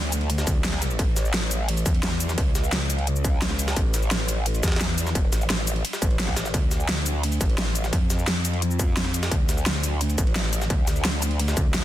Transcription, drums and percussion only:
0.12 closed hi-hat, ride, cabasa
0.21 ride
0.30 closed hi-hat, ride
0.38 snare, cabasa
0.47 kick, closed hi-hat, ride, cabasa
0.64 snare, closed hi-hat, open hi-hat
0.73 snare
0.82 snare, closed hi-hat, ride, cabasa
0.91 cabasa
0.99 kick, closed hi-hat, ride
1.16 snare, closed hi-hat, ride, cabasa
1.25 cabasa
1.34 snare, closed hi-hat, ride
1.42 snare
1.51 closed hi-hat, ride, cabasa
1.69 closed hi-hat, ride
1.77 ride, cabasa
1.86 kick, closed hi-hat, ride, cabasa
1.94 ride
2.03 snare, closed hi-hat, ride
2.12 snare
2.20 closed hi-hat, ride, cabasa
2.29 snare, cabasa
2.38 kick, closed hi-hat, ride
2.55 snare, closed hi-hat, ride, cabasa
2.64 cabasa
2.72 snare, closed hi-hat, ride
2.90 closed hi-hat, ride, cabasa
2.99 ride
3.07 closed hi-hat
3.16 cabasa
3.24 kick, closed hi-hat, ride, cabasa
3.42 snare, closed hi-hat, ride
3.51 snare
3.59 closed hi-hat, ride, cabasa
3.68 snare, ride, cabasa
3.76 kick, closed hi-hat, ride
3.94 snare, closed hi-hat, ride, cabasa
4.02 cabasa
4.11 snare, closed hi-hat, ride
4.20 snare
4.29 closed hi-hat, ride, cabasa
4.46 closed hi-hat, ride
4.55 ride, cabasa
4.63 kick, snare, closed hi-hat, ride, cabasa
4.68 snare, ride
4.72 snare, ride
4.76 snare, ride
4.81 snare, closed hi-hat
4.89 snare
4.98 closed hi-hat, ride, cabasa
5.07 snare, cabasa
5.15 kick, closed hi-hat, ride
5.33 snare, closed hi-hat, ride, cabasa
5.41 cabasa
5.50 snare, closed hi-hat, ride
5.67 closed hi-hat, ride, cabasa
5.76 ride
5.85 closed hi-hat, ride
5.93 snare, cabasa
6.02 kick, closed hi-hat, ride, cabasa
6.11 ride
6.19 snare, closed hi-hat, ride
6.28 kick, snare, ride
6.37 snare, closed hi-hat, ride, cabasa
6.45 snare, cabasa
6.54 kick, closed hi-hat, ride
6.71 snare, closed hi-hat, ride, cabasa
6.80 cabasa
6.89 snare, closed hi-hat, ride
6.97 snare
7.06 closed hi-hat, ride, cabasa
7.23 closed hi-hat, ride
7.32 ride, cabasa
7.41 kick, closed hi-hat, ride, cabasa
7.49 ride
7.58 snare, closed hi-hat, ride
7.67 snare
7.75 closed hi-hat, ride, cabasa
7.84 snare, cabasa
7.93 kick, closed hi-hat, ride
8.10 snare, closed hi-hat, ride, cabasa
8.19 cabasa
8.27 snare, closed hi-hat, ride
8.45 closed hi-hat, ride, cabasa
8.54 ride
8.62 closed hi-hat
8.71 cabasa
8.79 kick, closed hi-hat, ride, cabasa
8.97 snare, closed hi-hat, ride
9.06 snare
9.14 closed hi-hat, ride, cabasa
9.23 snare, ride, cabasa
9.31 kick, closed hi-hat, ride
9.49 snare, closed hi-hat, ride, cabasa
9.58 cabasa
9.66 snare, closed hi-hat, ride
9.75 snare
9.84 closed hi-hat, ride, cabasa
10.01 closed hi-hat, ride
10.10 ride, cabasa
10.18 kick, closed hi-hat, ride, cabasa
10.27 ride
10.36 snare, closed hi-hat, ride
10.44 snare
10.53 closed hi-hat, ride, cabasa
10.61 snare, cabasa
10.70 kick, closed hi-hat, ride
10.87 snare, closed hi-hat, ride, cabasa
10.96 cabasa
11.05 snare, closed hi-hat, ride
11.22 closed hi-hat, ride, cabasa
11.31 ride
11.39 closed hi-hat, ride
11.48 snare, cabasa
11.57 kick, closed hi-hat, ride, cabasa
11.74 snare, closed hi-hat, open hi-hat

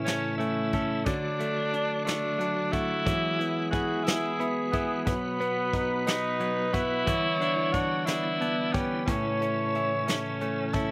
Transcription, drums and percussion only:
0.06 snare, closed hi-hat
0.40 closed hi-hat
0.73 kick, closed hi-hat
1.06 kick, closed hi-hat
1.40 closed hi-hat
1.74 closed hi-hat
2.07 snare, closed hi-hat
2.40 closed hi-hat
2.73 kick, closed hi-hat
3.07 kick, closed hi-hat
3.41 closed hi-hat
3.73 kick, closed hi-hat
4.06 snare, closed hi-hat
4.40 closed hi-hat
4.73 kick, closed hi-hat
5.07 kick, closed hi-hat
5.41 closed hi-hat
5.73 kick, closed hi-hat
6.07 snare, closed hi-hat
6.40 closed hi-hat
6.73 kick, closed hi-hat
7.07 kick, closed hi-hat
7.41 closed hi-hat
7.74 kick, closed hi-hat
8.07 snare, closed hi-hat
8.41 closed hi-hat
8.74 kick, closed hi-hat
9.08 kick, closed hi-hat
9.42 closed hi-hat
9.75 closed hi-hat
10.08 snare, closed hi-hat
10.41 closed hi-hat
10.73 kick, closed hi-hat

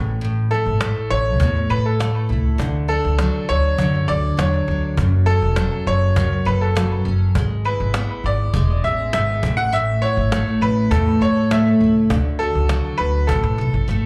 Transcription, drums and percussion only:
0.81 cajon slap
1.40 cajon bass
2.00 cajon slap
2.59 cajon bass
3.19 cajon slap
3.79 cajon bass
4.39 cajon slap
4.97 cajon bass
5.56 cajon slap
6.16 cajon bass
6.77 cajon slap
7.35 cajon bass
7.94 cajon slap
8.54 cajon bass
9.13 cajon slap
9.43 cajon bass
10.32 cajon slap
10.91 cajon bass
11.51 cajon slap
12.10 cajon bass
12.69 cajon slap
13.29 cajon bass
13.89 cajon slap

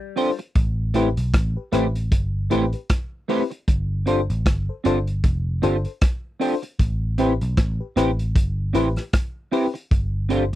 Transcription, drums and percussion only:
0.17 open hi-hat
0.39 closed hi-hat
0.55 kick, closed hi-hat
0.94 closed hi-hat
1.17 closed hi-hat
1.34 kick, cross-stick, closed hi-hat
1.73 cross-stick, closed hi-hat
1.96 closed hi-hat
2.12 kick, closed hi-hat
2.51 closed hi-hat
2.73 closed hi-hat
2.90 kick, cross-stick, closed hi-hat
3.29 open hi-hat
3.51 closed hi-hat
3.68 kick, closed hi-hat
4.07 closed hi-hat
4.30 closed hi-hat
4.46 kick, cross-stick, closed hi-hat
4.85 closed hi-hat
5.07 closed hi-hat
5.24 kick, closed hi-hat
5.63 closed hi-hat
5.85 closed hi-hat
6.01 kick, cross-stick, closed hi-hat
6.41 open hi-hat
6.63 closed hi-hat
6.79 kick, closed hi-hat
7.18 closed hi-hat
7.41 closed hi-hat
7.57 kick, cross-stick, closed hi-hat
7.97 cross-stick, closed hi-hat
8.19 closed hi-hat
8.36 kick, closed hi-hat
8.75 closed hi-hat
8.96 cross-stick, closed hi-hat
9.13 kick, cross-stick, closed hi-hat
9.53 open hi-hat
9.75 closed hi-hat
9.91 kick, closed hi-hat
10.30 closed hi-hat

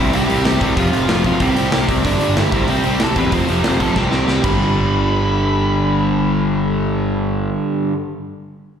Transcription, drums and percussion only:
0.13 open hi-hat
0.30 open hi-hat
0.45 snare, open hi-hat
0.61 kick, open hi-hat
0.77 kick, open hi-hat
0.93 open hi-hat
1.09 snare, open hi-hat
1.24 kick, open hi-hat
1.40 kick, open hi-hat
1.57 open hi-hat
1.72 snare, open hi-hat
1.89 kick, open hi-hat
2.05 kick, open hi-hat
2.21 open hi-hat
2.37 snare, open hi-hat
2.52 kick, open hi-hat
2.68 open hi-hat
2.84 open hi-hat
3.00 snare, open hi-hat
3.16 kick, open hi-hat
3.32 kick, open hi-hat
3.49 open hi-hat
3.64 snare, open hi-hat
3.80 kick, open hi-hat
3.96 kick, snare
4.11 snare
4.28 snare
4.44 kick, crash

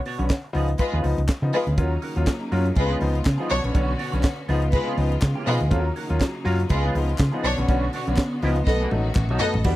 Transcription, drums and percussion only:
0.05 open hi-hat
0.19 closed hi-hat
0.30 kick, snare, clap, closed hi-hat
0.55 open hi-hat
0.68 closed hi-hat
0.78 kick, closed hi-hat
1.04 open hi-hat
1.18 closed hi-hat
1.29 kick, snare, clap, closed hi-hat
1.53 open hi-hat
1.67 closed hi-hat
1.78 kick, closed hi-hat
2.02 open hi-hat
2.16 closed hi-hat
2.27 kick, snare, clap, closed hi-hat
2.52 open hi-hat
2.65 closed hi-hat
2.75 kick, closed hi-hat
3.01 open hi-hat
3.15 closed hi-hat
3.25 kick, snare, clap, closed hi-hat
3.50 open hi-hat
3.64 closed hi-hat
3.75 kick, closed hi-hat
3.99 open hi-hat
4.13 closed hi-hat
4.23 kick, snare, clap, closed hi-hat
4.49 open hi-hat
4.62 closed hi-hat
4.72 kick, closed hi-hat
4.97 open hi-hat
5.12 closed hi-hat
5.22 kick, snare, clap, closed hi-hat
5.47 open hi-hat
5.61 closed hi-hat
5.71 kick, closed hi-hat
5.96 open hi-hat
6.10 closed hi-hat
6.20 kick, snare, clap, closed hi-hat
6.46 open hi-hat
6.60 closed hi-hat
6.69 kick, closed hi-hat
6.95 open hi-hat
7.09 closed hi-hat
7.18 kick, snare, clap, closed hi-hat
7.20 clap
7.44 open hi-hat
7.58 closed hi-hat
7.68 kick, closed hi-hat
7.93 open hi-hat
8.07 closed hi-hat
8.17 kick, snare, clap, closed hi-hat
8.18 clap
8.42 open hi-hat
8.56 closed hi-hat
8.67 kick, snare
8.91 high tom
9.15 kick, clap, mid tom
9.29 mid tom
9.40 floor tom
9.54 floor tom
9.64 kick, crash

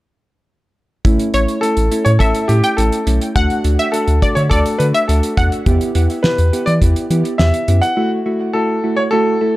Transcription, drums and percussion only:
1.05 kick, closed hi-hat
1.19 closed hi-hat
1.34 closed hi-hat
1.48 closed hi-hat
1.63 closed hi-hat
1.77 closed hi-hat
1.92 closed hi-hat
2.06 closed hi-hat
2.20 kick, closed hi-hat
2.35 closed hi-hat
2.49 closed hi-hat
2.64 closed hi-hat
2.78 closed hi-hat
2.92 closed hi-hat
3.07 closed hi-hat
3.21 closed hi-hat
3.36 kick, closed hi-hat
3.50 closed hi-hat
3.64 closed hi-hat
3.79 closed hi-hat
3.94 closed hi-hat
4.08 closed hi-hat
4.22 kick, closed hi-hat
4.37 closed hi-hat
4.51 kick, closed hi-hat
4.66 closed hi-hat
4.80 closed hi-hat
4.94 closed hi-hat
5.09 closed hi-hat
5.23 closed hi-hat
5.37 kick, closed hi-hat
5.52 closed hi-hat
5.66 kick, closed hi-hat
5.81 closed hi-hat
5.95 closed hi-hat
6.10 closed hi-hat
6.24 snare
6.38 closed hi-hat
6.53 closed hi-hat
6.67 closed hi-hat
6.82 kick, closed hi-hat
6.96 closed hi-hat
7.11 closed hi-hat
7.25 closed hi-hat
7.39 snare
7.54 closed hi-hat
7.68 closed hi-hat
7.83 closed hi-hat

